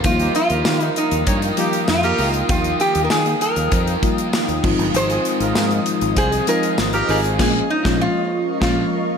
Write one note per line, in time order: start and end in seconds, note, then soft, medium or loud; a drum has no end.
0.00 1.25 D#3 medium
0.00 4.59 A#4 medium
0.00 7.35 F5 medium
0.00 closed hi-hat medium
0.04 0.27 D#2 loud
0.04 0.96 F3 medium
0.04 0.97 G3 medium
0.04 0.97 A#3 medium
0.04 1.26 A#3 medium
0.04 0.97 D#4 medium
0.04 1.28 D#4 medium
0.04 0.11 E4 medium
0.04 0.34 F4 medium
0.04 4.60 G5 medium
0.04 7.36 D#6 medium
0.04 kick loud
0.12 1.00 F4 medium
0.20 0.32 A#3 medium
0.20 0.32 D#4 medium
0.20 0.32 G4 medium
0.20 closed hi-hat medium
0.35 0.84 F4 medium
0.35 closed hi-hat medium
0.50 0.62 D#2 loud
0.50 0.94 F4 medium
0.50 0.94 G4 medium
0.50 0.94 A#4 medium
0.50 closed hi-hat medium
0.65 0.89 D#3 loud
0.65 snare loud
0.65 tambourine medium
0.81 0.97 D#4 medium
0.81 closed hi-hat soft
0.96 1.88 D#4 medium
0.96 closed hi-hat medium
1.11 1.23 D#2 medium
1.11 closed hi-hat medium
1.26 1.50 G2 loud
1.26 2.47 D#3 medium
1.26 2.19 A#3 medium
1.26 2.17 D#4 medium
1.26 1.39 G4 medium
1.26 1.39 A#4 medium
1.26 1.39 C#5 medium
1.26 kick medium
1.26 closed hi-hat medium
1.42 closed hi-hat medium
1.57 2.27 F3 medium
1.57 2.27 G3 medium
1.57 1.82 A#3 medium
1.57 2.27 A#3 medium
1.57 1.82 D#4 loud
1.57 2.27 D#4 medium
1.57 2.27 F4 medium
1.57 1.82 G4 loud
1.57 closed hi-hat medium
1.73 closed hi-hat medium
1.88 2.11 F2 loud
1.88 2.49 F4 medium
1.88 snare loud
1.88 tambourine medium
2.03 2.28 F4 loud
2.03 2.28 G4 loud
2.03 2.28 A#4 loud
2.03 closed hi-hat medium
2.17 2.42 C#2 loud
2.17 2.49 A#3 soft
2.17 2.49 D#4 medium
2.17 open hi-hat medium
2.34 closed hi-hat soft
2.48 2.72 D#2 loud
2.48 3.71 D#3 medium
2.48 3.41 D#3 medium
2.48 3.41 F3 medium
2.48 3.42 A#3 medium
2.48 3.72 A#3 medium
2.48 3.42 D#4 medium
2.48 2.80 F4 medium
2.48 3.42 G5 medium
2.48 kick loud
2.48 closed hi-hat medium
2.52 3.74 D#4 medium
2.64 closed hi-hat medium
2.80 3.04 G4 medium
2.80 closed hi-hat medium
2.95 3.07 D#2 loud
2.95 closed hi-hat medium
3.04 3.10 A#4 medium
3.10 3.34 D#3 loud
3.10 3.39 G#4 medium
3.10 snare loud
3.10 tambourine medium
3.26 closed hi-hat soft
3.41 4.29 A#4 medium
3.41 closed hi-hat medium
3.56 3.68 D#2 medium
3.56 closed hi-hat medium
3.71 3.95 F2 loud
3.71 4.65 D#3 medium
3.71 4.63 A#3 medium
3.71 7.24 D#4 medium
3.71 kick medium
3.71 closed hi-hat medium
3.87 closed hi-hat medium
4.02 4.62 F3 medium
4.02 4.64 G3 medium
4.02 4.64 A#3 medium
4.02 4.63 D#4 medium
4.02 4.63 F4 medium
4.02 kick medium
4.02 closed hi-hat medium
4.18 closed hi-hat medium
4.33 snare loud
4.33 tambourine medium
4.48 4.60 D#2 medium
4.48 closed hi-hat medium
4.63 4.75 G#1 loud
4.63 4.95 D#3 medium
4.63 5.61 F3 loud
4.63 4.94 G#3 medium
4.63 5.62 G#3 medium
4.63 5.62 C4 medium
4.63 5.62 D#4 medium
4.63 5.62 F4 loud
4.63 7.37 C5 medium
4.63 9.18 D#5 medium
4.63 kick loud
4.63 crash medium
4.79 4.90 G1 loud
4.79 closed hi-hat soft
4.94 5.17 G#1 loud
4.94 6.15 G#2 medium
4.94 6.17 D#3 medium
4.94 6.14 C5 loud
4.94 closed hi-hat loud
4.98 6.19 G#3 medium
5.09 5.22 D#4 medium
5.09 5.22 F4 medium
5.09 5.22 G#4 medium
5.09 closed hi-hat medium
5.25 closed hi-hat medium
5.40 5.52 G#1 loud
5.40 5.83 D#4 medium
5.40 5.83 F4 medium
5.40 5.83 A#4 medium
5.40 closed hi-hat medium
5.55 5.79 G#2 loud
5.55 snare loud
5.55 tambourine medium
5.71 closed hi-hat soft
5.86 closed hi-hat medium
6.01 6.13 G#1 medium
6.01 closed hi-hat medium
6.16 6.40 C2 loud
6.16 7.08 G#2 medium
6.16 7.09 D#3 medium
6.16 7.07 G#3 medium
6.16 6.29 F4 medium
6.16 6.29 G#4 medium
6.16 6.48 G#4 loud
6.16 6.29 C5 medium
6.16 kick medium
6.16 closed hi-hat medium
6.32 closed hi-hat medium
6.47 7.16 F3 medium
6.47 7.17 G#3 medium
6.47 7.17 C4 medium
6.47 6.72 D#4 medium
6.47 7.17 D#4 medium
6.47 6.72 F4 medium
6.47 7.17 F4 medium
6.47 6.72 G#4 loud
6.47 7.05 A#4 loud
6.47 closed hi-hat medium
6.63 closed hi-hat medium
6.78 7.01 G#1 medium
6.78 snare loud
6.78 tambourine medium
6.93 7.18 D#4 loud
6.93 7.18 G4 loud
6.93 7.18 A#4 loud
6.93 closed hi-hat medium
7.07 7.39 G#1 medium
7.07 7.40 D#3 soft
7.07 7.39 G#3 medium
7.07 7.39 G#4 medium
7.07 open hi-hat medium
7.24 closed hi-hat soft
7.38 7.60 A#1 loud
7.38 7.59 A#2 medium
7.38 7.60 F3 loud
7.38 7.60 G#3 loud
7.38 7.60 A#3 loud
7.38 7.61 A#3 loud
7.38 7.60 C#4 loud
7.38 7.60 F4 loud
7.38 7.68 G#4 medium
7.38 9.18 A#4 medium
7.38 9.18 F5 medium
7.38 9.18 C#6 medium
7.38 kick loud
7.38 snare loud
7.38 crash medium
7.70 7.99 D#4 medium
7.83 8.06 A#1 loud
7.83 8.05 A#2 loud
7.83 8.06 F3 loud
7.83 8.06 G#3 loud
7.83 8.06 A#3 loud
7.83 8.06 C#4 loud
7.83 8.06 F4 loud
7.83 kick loud
7.83 snare loud
7.88 8.07 A#3 loud
8.01 8.58 F4 medium
8.61 8.83 A#1 loud
8.61 8.82 A#2 loud
8.61 8.82 F3 loud
8.61 8.83 F3 loud
8.61 8.82 G#3 loud
8.61 8.82 A#3 loud
8.61 8.83 A#3 loud
8.61 8.82 C#4 loud
8.61 8.83 F4 loud
8.61 9.18 F4 medium
8.61 kick loud
8.61 snare loud